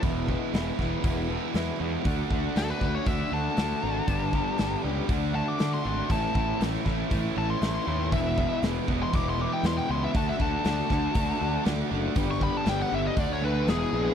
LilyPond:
<<
  \new Staff \with { instrumentName = "Lead electric guitar" } { \time 4/4 \key d \lydian \tempo 4 = 119 r1 | r4 a'16 b'8 cis''16 e''8 a''4.~ | a''4. r4 a''16 d'''8 c'''16 c'''8 | a''4 r4. a''16 c'''8 c'''16 c'''8 |
e''4 r8. c'''16 d'''16 c'''16 d'''16 g''16 c'''16 g''16 c'''16 e''16 | a''16 e''16 a''8 a''2 r4 | r16 cis'''16 b''16 a''16 g''16 fis''16 e''16 dis''16 d''16 cis''16 b'8 gis'4 | }
  \new Staff \with { instrumentName = "Tonewheel organ" } { \time 4/4 \key d \lydian <e' gis' b' e''>1 | <d' fis' a' d''>1 | <d' g' b' d''>2 <d' fis' a' d''>2 | <cis' e' a' cis''>1 |
<b e' gis' b'>1 | <d' fis' a' d''>1 | <d' g' b' d''>2 <d' fis' a' d''>4 <b e' gis' b'>4 | }
  \new Staff \with { instrumentName = "Overdriven electric guitar" } { \time 4/4 \key d \lydian <e, b, e gis b e'>8 <e, b, e gis b e'>8 <e, b, e gis b e'>8 <e, b, e gis b e'>8 <e, b, e gis b e'>8 <e, b, e gis b e'>8 <e, b, e gis b e'>8 <e, b, e gis b e'>8 | <d a d' fis'>8 <d a d' fis'>8 <d a d' fis'>8 <d a d' fis'>8 <d a d' fis'>8 <d a d' fis'>8 <d a d' fis'>8 <d a d' fis'>8 | <g, d g b d' g'>8 <g, d g b d' g'>8 <g, d g b d' g'>8 <g, d g b d' g'>8 <d a d' fis'>8 <d a d' fis'>8 <d a d' fis'>8 <d a d' fis'>8 | <a, e a cis' e'>8 <a, e a cis' e'>8 <a, e a cis' e'>8 <a, e a cis' e'>8 <a, e a cis' e'>8 <a, e a cis' e'>8 <a, e a cis' e'>8 <a, e a cis' e'>8 |
<e, b, e gis b e'>8 <e, b, e gis b e'>8 <e, b, e gis b e'>8 <e, b, e gis b e'>8 <e, b, e gis b e'>8 <e, b, e gis b e'>8 <e, b, e gis b e'>8 <e, b, e gis b e'>8 | <d a d' fis'>8 <d a d' fis'>8 <d a d' fis'>8 <d a d' fis'>8 <d a d' fis'>8 <d a d' fis'>8 <d a d' fis'>8 <d a d' fis'>8 | <g, d g b d' g'>8 <g, d g b d' g'>8 <g, d g b d' g'>8 <g, d g b d' g'>8 <d a d' fis'>8 <d a d' fis'>8 <e, b, e gis b gis'>8 <e, b, e gis b gis'>8 | }
  \new Staff \with { instrumentName = "Overdriven electric guitar" } { \clef bass \time 4/4 \key d \lydian <e, b, e>8 <e, b, e>8 <e, b, e>8 <e, b, e>8 <e, b, e>8 <e, b, e>8 <e, b, e>8 <e, b, e>8 | <d a d'>8 <d a d'>8 <d a d'>8 <d a d'>8 <d a d'>8 <d a d'>8 <d a d'>8 <d a d'>8 | <g, d g>8 <g, d g>8 <g, d g>8 <g, d g>8 <d a d'>8 <d a d'>8 <d a d'>8 <d a d'>8 | <a, e a>8 <a, e a>8 <a, e a>8 <a, e a>8 <a, e a>8 <a, e a>8 <a, e a>8 <a, e a>8 |
<e, b, e>8 <e, b, e>8 <e, b, e>8 <e, b, e>8 <e, b, e>8 <e, b, e>8 <e, b, e>8 <e, b, e>8 | <d a d'>8 <d a d'>8 <d a d'>8 <d a d'>8 <d a d'>8 <d a d'>8 <d a d'>8 <d a d'>8 | <g, d g>8 <g, d g>8 <g, d g>8 <g, d g>8 <d a d'>8 <d a d'>8 <e, b, e>8 <e, b, e>8 | }
  \new Staff \with { instrumentName = "Fingered electric bass" } { \clef bass \time 4/4 \key d \lydian e,,4 e,,8 e,,8 e,,4 e,8 e,8 | d,8 d,8 d,8 d,8 d,8 d,8 d,8 gis,,8 | g,,4 g,,8 cis,8 d,4 d8 gis,,8 | a,,8 a,,8 a,,8 a,,8 a,,8 a,,8 a,,8 dis,8 |
e,,4 e,,8 e,,8 e,,4 e,8 cis,8 | d,8 d,8 d,8 d,8 d,8 d,8 d,8 fis,,8 | g,,4 g,,8 g,,8 d,4 e,,8 bes,,8 | }
  \new DrumStaff \with { instrumentName = "Drums" } \drummode { \time 4/4 <hho bd>8 bd8 <hho sn>8 <bd sn>8 <hho bd>4 <hho sn>4 | <hho bd>8 bd8 <hho sn>8 bd8 <hho bd>4 <hho sn>4 | <hho bd>8 bd8 <hho sn>4 <hho bd>4 <hho sn>4 | <hho bd>8 bd8 <hho sn>8 <bd sn>8 <hho bd>4 <hho sn>4 |
<hho bd>8 bd8 <hho sn>8 bd8 <hho bd>4 <hho sn>4 | <hho bd>8 bd8 <hho sn>8 <bd sn>8 <hho bd>4 <hho sn>4 | <hho bd>8 bd8 <hho sn>4 <hho bd>4 <hho sn>4 | }
>>